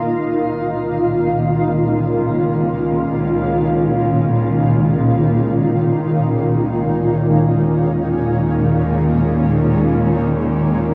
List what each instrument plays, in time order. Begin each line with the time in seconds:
Already playing: ambient pad A#2 D#3 A#3 D#4 F4
0.06 cello section C#2
0.39 ambient pad G#3
0.98 ambient pad C#4
7.55 cello section D#2